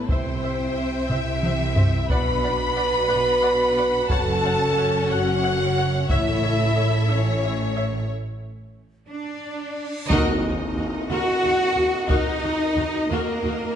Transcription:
Already playing: E4
0.08 C2 C3 C4 C5 E5 G5, taiko
0.43 C5 E5
0.77 C5 E5
1.08 C2 C3 E4 C5 E5, taiko low-mid
1.43 C5 E5, taiko mid
1.76 C5 E5, taiko low
2.08 B1 B2 D4 F#4 B4 D5 F#5 B5, taiko
2.43 D5 F#5
2.76 D5 F#5
3.08 B1 B2 D5 F#5
3.42 D5 F#5
3.76 D5 F#5
4.09 F#1 F#2 C#4 A4 C#5 F#5 A5, taiko
4.44 C#5 F#5
4.77 C#5 F#5
5.09 F#1 F#2 F#4 C#5 F#5
5.43 C#5 F#5
5.77 C#5 F#5
6.09 A1 A2 E4 A4 C#5 E5, taiko
6.43 C#5 E5
6.76 C#5 E5
7.08 A1 A2 C#4 C#5 E5
7.43 C#5 E5
7.75 C#5 E5
8.10 reverse cymbal
9.08 D4 D5
10.07 D#2 D#3 D#4 F#4 A#4 D#5, taiko, tam-tam, impact
10.43 D#2 D#4 F#4
10.77 D#2 F#4
11.08 D#2 F#4 A#4 F#5
11.44 D#2 D#4 F#4
11.76 D#2 F#4
12.08 D#2 D#4 F#4 A#4 D#5, taiko
12.43 D#2 D#4 F#4
12.76 D#2 F#4
13.09 D#2 A#3 F#4 A#4
13.43 D#2 D#4 F#4

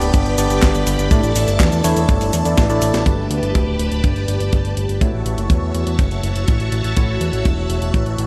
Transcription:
Already playing: B3 D4 G4 B4 D5 B5
0.01 D1, closed hi-hat, cabasa
0.14 G1, kick, closed hi-hat, cabasa
0.26 G1, closed hi-hat
0.38 G1 B3 D4 G4 D5, open hi-hat, cabasa
0.50 G1, closed hi-hat, cabasa
0.62 G1, kick, snare, clap, closed hi-hat, cabasa
0.74 G1, closed hi-hat, cabasa
0.87 G1, open hi-hat, cabasa
0.99 G1, closed hi-hat, cabasa
1.11 A2 A3 D4 E4 A4 D5 A5, kick, closed hi-hat, cabasa
1.23 A1, closed hi-hat, cabasa
1.36 A1, open hi-hat, cabasa
1.48 G1, closed hi-hat, cabasa
1.60 E2, kick, snare, clap, closed hi-hat, cabasa
1.72 E2, closed hi-hat, cabasa
1.84 E2 A3 D4 E4 C#5, open hi-hat, cabasa
1.97 E2, closed hi-hat, cabasa
2.09 G1, kick, closed hi-hat, cabasa
2.21 G1, open hi-hat, cabasa
2.33 E2, open hi-hat, cabasa
2.45 E2 A3 D4 E4 D5, closed hi-hat, cabasa
2.58 A1, kick, snare, closed hi-hat, cabasa
2.70 A1 A3 D4 E4 D5, closed hi-hat, cabasa
2.82 A1, open hi-hat, cabasa
2.94 A1, snare, closed hi-hat, cabasa
3.06 G1 A3 D4 G4 B4 D5 A5, kick, closed hi-hat
3.18 G1
3.31 D2, closed hi-hat
3.43 G1, closed hi-hat
3.55 D1, kick, closed hi-hat
3.67 D1
3.79 D1, closed hi-hat
3.92 D1, closed hi-hat
4.04 G1, kick, closed hi-hat
4.16 G1, closed hi-hat
4.28 G1, closed hi-hat
4.40 G1, closed hi-hat
4.53 G1, kick, closed hi-hat
4.65 G1, closed hi-hat
4.77 G1, closed hi-hat
4.89 G1, closed hi-hat
5.01 A2 A3 E4 F#4 C#5 E5, kick, closed hi-hat
5.14 A1
5.26 A1, closed hi-hat
5.38 F#1, closed hi-hat
5.50 E2, kick, closed hi-hat
5.62 E2
5.75 E2, closed hi-hat
5.87 E2, closed hi-hat
5.99 F#1, kick, closed hi-hat
6.11 F#1, closed hi-hat
6.23 F#1, closed hi-hat
6.35 F#1, closed hi-hat
6.48 A1, kick, closed hi-hat
6.60 A1, closed hi-hat
6.72 A1, closed hi-hat
6.84 A1, closed hi-hat
6.97 A1 A3 E4 F#4 C#5, kick, closed hi-hat
7.09 A1
7.21 E2, closed hi-hat
7.33 A1, closed hi-hat
7.45 E1, kick, closed hi-hat
7.57 E1
7.70 E1, closed hi-hat
7.82 E1, closed hi-hat
7.94 A1, kick, closed hi-hat
8.06 A1, closed hi-hat
8.18 A1, closed hi-hat

